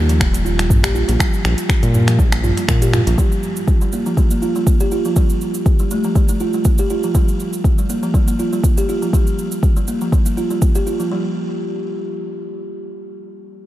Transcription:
0.00 0.22 D#2 medium
0.09 0.19 F3 medium
0.09 closed hi-hat soft
0.09 cabasa medium
0.20 0.72 D#1 medium
0.20 0.32 G3 medium
0.20 finger snap medium
0.20 kick loud
0.20 cabasa medium
0.34 0.44 G3 medium
0.34 closed hi-hat soft
0.34 cabasa medium
0.45 0.52 F4 medium
0.45 cabasa medium
0.58 0.69 G3 medium
0.58 finger snap medium
0.58 closed hi-hat medium
0.58 cabasa medium
0.70 1.04 A#1 medium
0.70 kick loud
0.70 mid tom medium
0.70 cabasa medium
0.83 0.94 G4 loud
0.83 finger snap medium
0.83 closed hi-hat soft
0.83 cabasa medium
0.95 1.07 F4 medium
0.95 cabasa medium
1.08 1.17 A#1 loud
1.08 1.18 F3 medium
1.08 closed hi-hat soft
1.08 cabasa medium
1.20 1.27 G3 loud
1.20 finger snap medium
1.20 kick loud
1.20 cabasa medium
1.34 cabasa medium
1.44 1.55 A#1 loud
1.44 finger snap medium
1.44 cabasa medium
1.58 closed hi-hat soft
1.58 cabasa medium
1.69 finger snap medium
1.69 kick loud
1.69 cabasa medium
1.82 2.20 A#2 medium
1.82 1.89 G3 medium
1.82 closed hi-hat soft
1.82 cabasa soft
1.94 2.06 A#3 medium
1.94 mid tom medium
1.94 cabasa medium
2.07 2.18 F3 medium
2.07 finger snap medium
2.07 closed hi-hat soft
2.07 cabasa soft
2.19 2.52 A#1 medium
2.19 2.31 G3 medium
2.19 kick loud
2.19 cabasa soft
2.32 2.42 G3 medium
2.32 finger snap medium
2.32 closed hi-hat soft
2.32 cabasa medium
2.44 2.51 F4 medium
2.44 mid tom medium
2.44 cabasa medium
2.57 2.68 G3 medium
2.57 closed hi-hat soft
2.57 cabasa medium
2.68 3.02 A#2 medium
2.68 finger snap medium
2.68 kick loud
2.68 cabasa medium
2.82 2.92 G4 loud
2.82 closed hi-hat soft
2.82 cabasa medium
2.94 3.05 F4 medium
2.94 finger snap medium
2.94 mid tom medium
2.94 cabasa soft
3.06 3.15 A#1 medium
3.06 3.17 F3 medium
3.06 closed hi-hat medium
3.06 cabasa medium
3.18 3.25 G3 loud
3.18 kick loud
3.18 cabasa medium
3.32 cabasa soft
3.43 cabasa soft
3.56 cabasa medium
3.68 kick loud
3.68 cabasa soft
3.81 3.87 G3 medium
3.81 cabasa soft
3.92 4.05 A#3 medium
3.92 cabasa medium
4.06 4.16 F3 medium
4.06 cabasa soft
4.17 4.29 G3 medium
4.17 kick loud
4.17 cabasa soft
4.31 4.41 A#3 medium
4.31 cabasa medium
4.42 4.49 F4 medium
4.42 cabasa soft
4.55 4.66 G3 medium
4.55 cabasa medium
4.67 kick loud
4.67 cabasa medium
4.80 4.91 G4 medium
4.80 cabasa medium
4.91 5.04 F4 medium
4.91 cabasa soft
5.05 5.15 F3 medium
5.05 cabasa soft
5.16 5.24 G3 loud
5.16 kick loud
5.16 cabasa medium
5.30 cabasa soft
5.41 cabasa soft
5.54 cabasa medium
5.66 kick loud
5.66 cabasa soft
5.79 5.86 G3 medium
5.79 cabasa soft
5.91 6.03 A3 medium
5.91 cabasa medium
6.04 6.15 F3 medium
6.04 cabasa soft
6.15 6.28 G3 medium
6.15 kick loud
6.15 cabasa soft
6.29 6.39 A3 medium
6.29 cabasa medium
6.40 6.48 F4 medium
6.40 cabasa soft
6.53 6.65 G3 medium
6.53 cabasa soft
6.65 kick loud
6.65 cabasa medium
6.78 6.89 G4 loud
6.78 cabasa medium
6.90 7.02 F4 medium
6.90 cabasa soft
7.03 7.14 F3 medium
7.03 cabasa soft
7.15 7.22 G3 medium
7.15 kick loud
7.15 cabasa medium
7.28 cabasa soft
7.40 cabasa soft
7.53 cabasa medium
7.64 kick loud
7.64 cabasa soft
7.78 7.84 G3 medium
7.78 cabasa soft
7.90 8.01 A#3 medium
7.90 cabasa medium
8.03 8.13 F3 medium
8.03 cabasa soft
8.14 8.26 G3 medium
8.14 kick loud
8.14 cabasa soft
8.28 8.38 A#3 medium
8.28 cabasa medium
8.39 8.46 F4 medium
8.39 cabasa soft
8.53 8.63 G3 medium
8.53 cabasa soft
8.64 kick loud
8.64 cabasa medium
8.78 8.87 G4 medium
8.78 cabasa medium
8.89 9.01 F4 medium
8.89 cabasa soft
9.02 9.12 F3 medium
9.02 cabasa soft
9.13 9.20 G3 medium
9.13 kick loud
9.13 cabasa medium
9.27 cabasa soft
9.39 cabasa soft
9.52 cabasa medium
9.63 kick loud
9.63 cabasa soft
9.76 9.82 G3 medium
9.76 cabasa soft
9.88 10.00 A#3 medium
9.88 cabasa medium
10.01 10.11 F3 medium
10.01 cabasa soft
10.12 10.24 G3 medium
10.12 kick loud
10.12 cabasa soft
10.26 10.36 A#3 medium
10.26 cabasa medium
10.37 10.44 F4 medium
10.37 cabasa soft
10.50 10.61 G3 medium
10.50 cabasa soft
10.62 kick loud
10.62 cabasa medium
10.75 10.86 G4 medium
10.75 cabasa medium
10.87 10.99 F4 medium
10.87 cabasa soft
11.00 11.10 F3 medium
11.00 cabasa soft
11.11 11.34 G3 medium

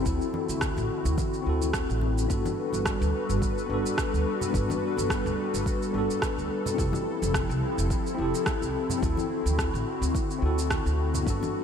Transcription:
0.00 2.25 C4 medium
0.00 1.41 C4 medium
0.00 2.25 E4 medium
0.04 0.18 D2 medium
0.04 2.27 D3 medium
0.04 1.42 E4 medium
0.04 2.27 F#4 medium
0.04 1.43 F#4 medium
0.04 kick loud
0.04 shaker medium
0.09 1.44 A4 medium
0.21 shaker soft
0.34 high conga medium
0.49 0.70 D2 medium
0.49 shaker medium
0.61 kick loud
0.61 cross-stick loud
0.61 shaker medium
0.77 0.87 A1 loud
0.77 high conga medium
0.77 shaker soft
1.05 1.15 D2 medium
1.05 low conga medium
1.05 shaker medium
1.18 kick loud
1.18 high conga medium
1.18 shaker soft
1.34 shaker soft
1.42 2.25 C4 medium
1.42 2.26 E4 medium
1.46 1.84 D2 medium
1.46 2.27 F#4 medium
1.46 2.28 A4 medium
1.62 high conga medium
1.62 shaker medium
1.73 kick loud
1.73 cross-stick loud
1.73 shaker medium
1.89 2.25 A1 loud
1.89 shaker soft
2.01 high conga medium
2.18 shaker medium
2.26 2.42 G1 medium
2.26 6.74 G3 medium
2.26 3.65 B3 medium
2.26 3.66 D4 medium
2.26 6.74 F#4 medium
2.26 8.98 A4 medium
2.26 6.74 B4 medium
2.26 kick loud
2.26 shaker medium
2.31 3.67 F#4 medium
2.31 3.69 A4 medium
2.45 high conga medium
2.45 shaker soft
2.73 2.94 G1 medium
2.73 high conga medium
2.73 shaker medium
2.86 kick loud
2.86 cross-stick loud
2.86 shaker medium
3.01 3.11 D2 loud
3.01 shaker soft
3.29 3.39 G1 loud
3.29 shaker medium
3.42 kick loud
3.42 shaker soft
3.58 shaker soft
3.66 3.82 G1 medium
3.66 4.49 B3 medium
3.66 4.50 D4 medium
3.71 4.52 F#4 medium
3.71 4.53 A4 medium
3.86 shaker medium
3.98 kick loud
3.98 cross-stick loud
3.98 shaker medium
4.14 4.23 D2 medium
4.14 shaker soft
4.41 low conga medium
4.41 shaker medium
4.50 4.66 G1 medium
4.50 5.89 B3 medium
4.50 5.90 D4 medium
4.50 kick loud
4.55 5.92 F#4 medium
4.55 5.93 A4 medium
4.55 shaker medium
4.70 high conga medium
4.70 shaker soft
4.97 5.19 G1 medium
4.97 high conga medium
4.97 shaker medium
5.10 kick loud
5.10 cross-stick loud
5.10 shaker medium
5.26 5.35 D2 medium
5.26 shaker soft
5.54 5.63 G1 medium
5.54 shaker medium
5.66 kick loud
5.66 shaker medium
5.82 shaker soft
5.91 6.06 G1 medium
5.91 6.73 B3 medium
5.91 6.75 D4 medium
5.95 6.76 F#4 medium
5.95 6.77 A4 medium
6.11 shaker medium
6.22 kick loud
6.22 cross-stick loud
6.22 shaker medium
6.38 6.48 D2 medium
6.38 shaker soft
6.66 low conga medium
6.66 shaker medium
6.74 9.00 F3 medium
6.74 8.13 C4 medium
6.74 11.23 C4 medium
6.74 8.14 E4 medium
6.74 11.23 E4 medium
6.78 6.90 F1 loud
6.78 8.16 G4 medium
6.78 8.17 A4 medium
6.78 kick loud
6.78 shaker medium
6.93 high conga medium
6.93 shaker soft
7.22 7.43 F1 medium
7.22 high conga medium
7.22 shaker medium
7.34 kick loud
7.34 cross-stick loud
7.34 shaker medium
7.50 7.59 C2 loud
7.50 shaker soft
7.78 7.88 F1 loud
7.78 shaker medium
7.90 kick loud
7.90 shaker medium
8.07 shaker soft
8.15 8.31 F1 medium
8.15 8.97 C4 medium
8.15 8.99 E4 medium
8.19 9.00 G4 medium
8.19 9.01 A4 medium
8.35 shaker medium
8.46 kick loud
8.46 cross-stick loud
8.46 shaker medium
8.62 8.72 C2 medium
8.62 shaker soft
8.90 low conga medium
8.90 shaker medium
8.98 11.24 D3 medium
8.98 10.38 C4 medium
8.98 10.39 E4 medium
9.02 9.15 D2 loud
9.02 11.64 F#4 loud
9.02 10.40 F#4 medium
9.02 10.41 A4 medium
9.02 kick loud
9.02 shaker medium
9.17 high conga medium
9.17 shaker soft
9.46 9.67 D2 medium
9.46 high conga medium
9.46 shaker medium
9.59 kick loud
9.59 cross-stick loud
9.59 shaker medium
9.74 9.84 A1 medium
9.74 shaker soft
10.02 10.12 D2 medium
10.02 shaker medium
10.15 kick loud
10.15 shaker medium
10.31 shaker soft
10.39 10.80 D2 medium
10.39 11.22 C4 medium
10.39 11.23 E4 medium
10.43 11.24 F#4 medium
10.43 11.25 A4 medium
10.59 shaker medium
10.70 kick loud
10.70 cross-stick loud
10.70 shaker medium
10.86 11.22 D2 medium
10.86 shaker soft
11.14 low conga medium
11.14 shaker medium
11.23 11.39 G1 loud
11.23 11.64 G3 medium
11.23 11.64 B3 medium
11.23 11.64 D4 medium
11.23 11.64 A4 medium
11.23 11.64 B4 loud
11.23 kick loud
11.27 11.64 F#4 medium
11.27 11.64 A4 medium
11.27 shaker medium
11.43 high conga medium
11.43 shaker soft

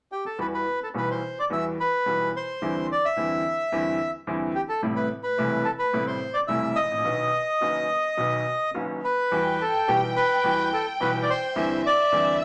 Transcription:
0.12 0.24 G4 soft
0.26 0.40 A4 soft
0.38 0.62 E2 soft
0.38 0.62 E3 soft
0.38 0.62 G3 soft
0.38 0.62 B3 soft
0.38 0.62 F#4 soft
0.38 0.47 B4 soft
0.54 0.80 B4 medium
0.83 0.89 A4 soft
0.94 1.18 B1 medium
0.94 1.18 B2 soft
0.94 1.18 E3 soft
0.94 1.18 G3 soft
0.94 1.18 B3 soft
0.94 1.18 F#4 soft
0.94 1.09 B4 medium
1.11 1.39 C5 medium
1.39 1.45 D5 medium
1.50 1.74 E2 medium
1.50 1.74 E3 medium
1.50 1.74 G3 soft
1.50 1.74 B3 soft
1.50 1.74 F#4 soft
1.50 1.65 E5 medium
1.80 2.31 B4 medium
2.06 2.30 B1 soft
2.06 2.30 B2 soft
2.06 2.30 E3 soft
2.06 2.30 G3 soft
2.06 2.30 B3 soft
2.06 2.30 F#4 soft
2.36 2.87 C5 medium
2.62 2.85 E2 medium
2.62 2.85 D3 soft
2.62 2.85 E3 medium
2.62 2.85 G3 soft
2.62 2.85 C4 soft
2.62 2.85 E4 soft
2.92 3.05 D5 medium
3.05 4.11 E5 medium
3.17 3.40 E2 medium
3.17 3.40 D3 soft
3.17 3.40 E3 medium
3.17 3.40 G3 soft
3.17 3.40 C4 soft
3.17 3.40 E4 soft
3.72 3.96 E2 medium
3.72 3.95 D3 soft
3.72 3.96 E3 medium
3.72 3.96 G3 soft
3.72 3.96 C4 soft
3.72 3.96 E4 medium
4.27 4.51 E2 medium
4.27 4.51 D3 soft
4.27 4.51 E3 medium
4.27 4.51 G3 soft
4.27 4.51 C4 soft
4.27 4.51 E4 medium
4.55 4.61 G4 medium
4.69 4.81 A4 medium
4.82 5.06 A1 medium
4.82 5.06 A2 medium
4.82 5.06 C3 soft
4.82 5.06 G3 soft
4.82 5.06 A3 soft
4.82 5.06 E4 medium
4.96 5.09 B4 medium
5.23 5.67 B4 medium
5.38 5.62 E1 medium
5.38 5.62 E2 medium
5.38 5.62 C3 soft
5.38 5.62 G3 soft
5.38 5.62 A3 soft
5.38 5.62 E4 medium
5.64 5.71 A4 medium
5.79 6.05 B4 medium
5.93 6.17 A1 medium
5.93 6.17 A2 medium
5.93 6.17 C3 medium
5.93 6.17 G3 soft
5.93 6.17 A3 medium
5.93 6.17 E4 medium
6.07 6.36 C5 medium
6.34 6.40 D5 medium
6.48 6.72 E1 medium
6.48 6.73 E2 medium
6.48 6.72 C3 medium
6.48 6.73 G3 soft
6.48 6.73 A3 soft
6.48 6.73 E4 medium
6.48 6.77 E5 medium
6.76 8.70 D#5 medium
6.83 6.91 G#1 soft
6.91 6.98 A1 soft
6.98 7.05 A#1 medium
7.04 7.29 B1 medium
7.04 7.29 B2 medium
7.04 7.29 D#3 soft
7.04 7.29 F#3 soft
7.04 7.29 B3 soft
7.04 7.29 F#4 medium
7.61 7.85 F#1 medium
7.61 7.86 F#2 medium
7.61 7.85 D#3 medium
7.61 7.85 F#3 soft
7.61 7.86 B3 soft
7.61 7.86 F#4 medium
8.17 8.42 B1 medium
8.17 8.42 B2 medium
8.17 8.42 D#3 soft
8.17 8.42 F#3 soft
8.17 8.42 B3 soft
8.17 8.42 F#4 medium
8.74 8.99 F#1 medium
8.74 8.99 F#2 medium
8.74 8.99 D#3 soft
8.74 8.99 F#3 soft
8.74 8.99 B3 soft
8.74 8.99 F#4 medium
9.04 9.63 B4 medium
9.31 9.56 E2 medium
9.31 9.56 E3 medium
9.31 9.56 G3 soft
9.31 9.56 B3 soft
9.31 9.56 F#4 medium
9.31 11.53 G5 medium
9.61 9.90 A4 medium
9.88 10.12 B1 medium
9.88 10.12 B2 medium
9.88 10.12 E3 medium
9.88 10.12 G3 soft
9.88 10.12 B3 soft
9.88 10.12 F#4 medium
9.88 10.01 G4 medium
10.16 10.69 B4 medium
10.44 10.68 E2 medium
10.44 10.68 E3 medium
10.44 10.68 G3 soft
10.44 10.68 B3 soft
10.44 10.68 F#4 medium
10.73 10.86 A4 medium
11.00 11.25 B1 medium
11.00 11.25 B2 medium
11.00 11.24 E3 medium
11.00 11.24 G3 soft
11.00 11.24 B3 soft
11.00 11.25 F#4 medium
11.00 11.11 B4 medium
11.23 11.29 D5 medium
11.30 11.82 C5 medium
11.56 11.80 E2 medium
11.56 11.80 D3 soft
11.56 11.80 E3 medium
11.56 11.80 G3 soft
11.56 11.80 C4 soft
11.56 11.80 E4 medium
11.56 12.45 E5 medium
11.86 12.37 D5 medium
12.12 12.36 E2 medium
12.12 12.36 D3 soft
12.12 12.36 E3 medium
12.12 12.36 G3 soft
12.12 12.36 C4 medium
12.12 12.36 E4 medium
12.41 12.45 E5 medium

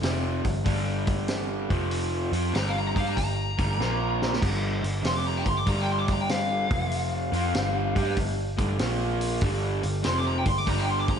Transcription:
0.02 0.41 F1 medium
0.02 0.43 F2 medium
0.02 0.43 C3 medium
0.02 0.44 F3 medium
0.02 snare loud
0.02 open hi-hat medium
0.44 0.64 G1 medium
0.44 0.61 G2 medium
0.44 0.62 D3 medium
0.44 kick medium
0.44 open hi-hat medium
0.65 1.66 G1 medium
0.65 1.68 G2 medium
0.65 1.69 D3 medium
0.65 1.69 G3 loud
0.65 kick medium
0.65 open hi-hat medium
1.07 kick medium
1.07 open hi-hat medium
1.28 snare loud
1.28 open hi-hat medium
1.70 2.29 F1 loud
1.70 2.31 F2 medium
1.70 2.32 C3 medium
1.70 2.31 F3 loud
1.70 kick loud
1.70 open hi-hat medium
1.91 open hi-hat medium
2.32 2.52 F2 loud
2.32 2.53 F3 loud
2.32 2.54 C4 loud
2.32 2.54 F4 loud
2.32 open hi-hat medium
2.52 2.93 G1 medium
2.52 2.93 G2 medium
2.52 2.94 D3 medium
2.52 2.94 G3 medium
2.52 2.68 A#5 loud
2.52 snare loud
2.52 open hi-hat medium
2.68 2.75 F5 medium
2.79 2.87 A#5 loud
2.88 2.92 A#5 medium
2.95 3.15 G2 loud
2.95 3.16 G3 medium
2.95 3.16 D4 medium
2.95 3.17 G4 medium
2.95 3.11 F5 loud
2.95 kick medium
2.95 open hi-hat medium
3.07 3.15 A#5 medium
3.16 3.55 G1 medium
3.16 3.50 G2 medium
3.16 3.50 D3 medium
3.16 4.38 A#5 loud
3.16 kick medium
3.16 open hi-hat medium
3.58 3.78 G1 medium
3.58 3.78 G2 medium
3.58 3.78 D3 loud
3.58 3.79 G3 loud
3.58 kick medium
3.58 open hi-hat medium
3.79 4.38 A#1 medium
3.79 4.41 A#2 medium
3.79 4.41 F3 medium
3.79 4.42 A#3 loud
3.79 snare medium
4.22 snare medium
4.33 snare medium
4.41 4.81 G1 loud
4.41 4.82 G2 medium
4.41 4.82 D3 loud
4.41 4.82 G3 loud
4.41 kick loud
4.41 open hi-hat medium
4.41 crash medium
4.83 5.03 G1 medium
4.83 5.00 G2 medium
4.83 5.00 D3 medium
4.83 open hi-hat medium
5.02 5.43 F1 medium
5.02 5.44 F2 medium
5.02 5.44 C3 medium
5.02 5.45 F3 loud
5.02 snare loud
5.02 open hi-hat medium
5.07 5.16 C6 loud
5.16 5.24 D6 medium
5.27 5.46 A#5 medium
5.37 5.42 G5 loud
5.45 5.65 G1 medium
5.45 5.62 G2 medium
5.45 5.62 D3 medium
5.45 5.58 C6 loud
5.45 kick medium
5.45 open hi-hat medium
5.58 5.66 D6 medium
5.66 6.67 G1 medium
5.66 6.70 G2 loud
5.66 6.71 D3 medium
5.66 6.71 G3 loud
5.66 5.81 A#5 loud
5.66 kick medium
5.66 open hi-hat medium
5.81 5.88 G5 medium
5.92 5.99 C6 loud
5.99 6.04 D6 medium
6.08 kick medium
6.08 open hi-hat medium
6.12 6.21 A#5 medium
6.21 6.29 G5 medium
6.29 8.13 F5 loud
6.29 snare loud
6.29 open hi-hat medium
6.70 7.29 F1 medium
6.70 7.32 F2 medium
6.70 7.32 C3 medium
6.70 7.31 F3 loud
6.70 kick loud
6.70 open hi-hat medium
6.91 open hi-hat medium
7.32 7.52 F2 loud
7.32 7.53 F3 loud
7.32 7.54 C4 loud
7.32 7.54 F4 loud
7.32 open hi-hat medium
7.54 7.93 G1 medium
7.54 7.95 G2 medium
7.54 7.95 D3 medium
7.54 7.94 G3 medium
7.54 snare loud
7.54 open hi-hat medium
7.95 8.16 G2 medium
7.95 8.16 G3 medium
7.95 8.17 D4 medium
7.95 8.17 G4 loud
7.95 kick medium
7.95 open hi-hat medium
8.17 8.55 G1 medium
8.17 8.50 G2 medium
8.17 8.51 D3 medium
8.17 kick medium
8.17 open hi-hat medium
8.57 8.78 G1 loud
8.57 8.78 G2 loud
8.57 8.78 D3 loud
8.57 8.78 G3 loud
8.57 kick loud
8.57 open hi-hat medium
8.79 9.39 A#1 medium
8.79 9.41 A#2 medium
8.79 9.41 F3 loud
8.79 9.42 A#3 loud
8.79 snare loud
8.79 open hi-hat medium
9.21 open hi-hat medium
9.41 9.81 G1 loud
9.41 9.81 G2 loud
9.41 9.82 D3 medium
9.41 9.83 G3 loud
9.41 kick loud
9.41 open hi-hat medium
9.83 10.03 G1 medium
9.83 10.00 G2 medium
9.83 10.00 D3 medium
9.83 open hi-hat medium
10.03 10.44 F1 medium
10.03 10.44 F2 medium
10.03 10.44 C3 medium
10.03 10.45 F3 loud
10.03 10.18 C6 loud
10.03 snare loud
10.03 open hi-hat medium
10.19 10.25 D6 medium
10.27 10.38 A#5 loud
10.38 10.42 G5 loud
10.45 10.66 G1 medium
10.45 10.62 G2 medium
10.45 10.63 D3 medium
10.45 10.58 C6 loud
10.45 kick medium
10.45 open hi-hat medium
10.58 10.66 D6 loud
10.67 11.20 G1 loud
10.67 11.20 G2 loud
10.67 11.20 D3 loud
10.67 11.20 G3 loud
10.67 10.82 A#5 loud
10.67 kick medium
10.67 open hi-hat medium
10.78 10.86 G5 medium
10.90 11.00 C6 loud
11.00 11.04 D6 loud
11.08 11.20 A#5 loud
11.08 kick loud
11.08 open hi-hat medium

